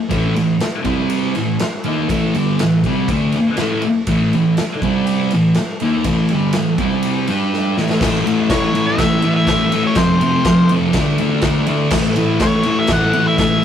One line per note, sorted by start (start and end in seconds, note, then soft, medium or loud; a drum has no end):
0.09 0.34 A2 medium
0.09 0.34 E3 medium
0.09 0.35 A3 medium
0.09 kick loud
0.09 ride medium
0.35 0.55 A2 medium
0.35 0.55 E3 medium
0.35 ride medium
0.60 snare loud
0.60 ride medium
0.84 1.34 C3 medium
0.84 1.35 G3 medium
0.84 1.35 C4 loud
0.84 kick loud
0.84 ride medium
1.10 ride medium
1.35 1.55 A2 medium
1.35 1.56 E3 medium
1.35 ride medium
1.59 snare loud
1.59 ride medium
1.84 2.09 D#3 medium
1.84 2.09 A#3 medium
1.84 2.10 D#4 medium
1.84 ride medium
2.09 2.34 A2 medium
2.09 2.34 E3 medium
2.09 2.34 A3 loud
2.09 kick loud
2.09 ride loud
2.34 2.59 G2 medium
2.34 2.60 D3 loud
2.34 2.60 G3 loud
2.34 ride medium
2.59 2.81 A2 medium
2.59 2.81 E3 medium
2.59 snare loud
2.59 ride loud
2.84 3.09 C3 medium
2.84 3.10 G3 medium
2.84 3.10 C4 loud
2.84 kick medium
2.84 ride medium
3.08 3.34 D3 medium
3.08 3.34 A3 loud
3.08 3.35 D4 medium
3.08 kick loud
3.08 ride loud
3.32 muted distorted electric guitar stroke medium
3.32 ride medium
3.57 3.83 A2 medium
3.57 3.84 E3 medium
3.57 snare loud
3.57 ride medium
3.61 3.84 A3 loud
3.82 muted distorted electric guitar stroke medium
3.82 ride medium
4.07 4.33 A2 medium
4.07 4.33 E3 medium
4.07 4.33 A3 medium
4.07 kick loud
4.07 ride loud
4.33 4.54 A2 medium
4.33 4.54 E3 medium
4.33 ride medium
4.57 snare loud
4.57 ride medium
4.82 5.32 C3 medium
4.82 5.32 G3 loud
4.82 5.32 C4 loud
4.82 kick loud
4.82 ride medium
5.07 ride medium
5.31 5.53 A2 medium
5.31 5.53 E3 medium
5.31 ride medium
5.54 snare loud
5.54 ride medium
5.80 6.05 D#3 medium
5.80 6.06 A#3 loud
5.80 6.06 D#4 loud
5.80 ride medium
6.04 6.30 A2 medium
6.04 6.30 E3 medium
6.04 6.31 A3 medium
6.04 kick loud
6.04 ride loud
6.29 6.55 G2 medium
6.29 6.54 D3 medium
6.29 ride medium
6.33 6.55 G3 loud
6.53 6.75 A2 medium
6.53 6.75 E3 medium
6.53 snare loud
6.53 ride loud
6.78 7.28 C3 medium
6.78 7.27 G3 loud
6.78 7.29 C4 loud
6.78 kick loud
6.78 ride medium
7.03 ride loud
7.27 7.77 G3 medium
7.27 7.78 D4 medium
7.27 7.78 G4 loud
7.27 ride medium
7.54 snare medium
7.77 8.00 A2 medium
7.77 8.01 E3 medium
7.77 8.02 A3 loud
7.77 snare medium
7.90 snare medium
8.01 8.23 A2 medium
8.01 8.24 E3 medium
8.01 8.26 A3 loud
8.01 kick loud
8.01 snare loud
8.01 crash loud
8.25 8.49 A2 medium
8.25 8.50 E3 medium
8.25 8.51 A3 medium
8.25 ride medium
8.50 8.72 A2 loud
8.50 8.73 E3 loud
8.50 8.74 A3 loud
8.50 8.85 C#5 loud
8.50 kick loud
8.50 snare loud
8.50 ride loud
8.74 8.96 A2 medium
8.74 8.97 E3 medium
8.74 8.99 A3 medium
8.74 ride medium
8.86 9.32 E5 loud
8.97 9.21 A2 loud
8.97 9.22 E3 loud
8.97 9.24 A3 loud
8.97 kick loud
8.97 snare loud
8.97 ride loud
9.22 9.47 A2 medium
9.22 9.48 E3 medium
9.22 9.49 A3 loud
9.22 ride medium
9.36 9.82 E5 loud
9.47 9.71 A2 loud
9.47 9.72 E3 loud
9.47 9.73 A3 loud
9.47 kick loud
9.47 snare loud
9.47 ride loud
9.72 9.96 A2 medium
9.72 9.97 E3 medium
9.72 10.95 A3 loud
9.72 ride medium
9.87 9.97 C#5 medium
9.95 10.20 F2 medium
9.95 10.20 C3 loud
9.95 10.22 F3 medium
9.95 10.71 C5 medium
9.95 kick loud
9.95 snare loud
9.95 ride loud
10.21 10.45 F2 medium
10.21 10.45 C3 medium
10.21 10.46 F3 loud
10.21 ride medium
10.44 10.70 F2 loud
10.44 10.70 C3 loud
10.44 10.70 F3 loud
10.44 kick loud
10.44 snare loud
10.44 ride loud
10.69 10.94 F2 medium
10.69 10.94 C3 medium
10.69 10.94 F3 loud
10.69 ride medium
10.93 11.18 D3 loud
10.93 11.19 A3 loud
10.93 11.19 D4 loud
10.93 kick loud
10.93 snare loud
10.93 ride loud
11.18 11.40 D3 medium
11.18 11.43 A3 loud
11.18 11.42 D4 loud
11.18 ride medium
11.41 11.65 D3 loud
11.41 11.67 A3 loud
11.41 11.67 D4 loud
11.41 kick loud
11.41 snare loud
11.41 ride loud
11.66 11.91 D3 loud
11.66 11.91 A3 loud
11.66 11.92 D4 loud
11.66 ride medium
11.90 12.13 A2 medium
11.90 12.15 E3 medium
11.90 12.16 A3 loud
11.90 kick loud
11.90 snare loud
11.90 crash loud
12.15 12.39 A2 medium
12.15 12.40 E3 loud
12.15 12.42 A3 loud
12.15 ride medium
12.40 12.63 A2 loud
12.40 12.64 E3 loud
12.40 12.66 A3 loud
12.40 12.80 C#5 loud
12.40 kick loud
12.40 snare loud
12.40 ride loud
12.63 12.88 A2 medium
12.63 12.89 E3 loud
12.63 12.90 A3 loud
12.63 ride medium
12.79 12.90 E5 loud
12.87 13.12 A2 loud
12.87 13.13 E3 loud
12.87 13.14 A3 loud
12.87 kick loud
12.87 snare loud
12.87 ride loud
12.93 13.27 F#5 loud
13.13 13.38 A2 loud
13.13 13.39 E3 loud
13.13 13.40 A3 medium
13.13 ride medium
13.28 13.37 E5 loud
13.38 13.61 A2 loud
13.38 13.61 E3 loud
13.38 13.63 A3 loud
13.38 13.65 E5 loud
13.38 kick loud
13.38 snare loud
13.38 ride loud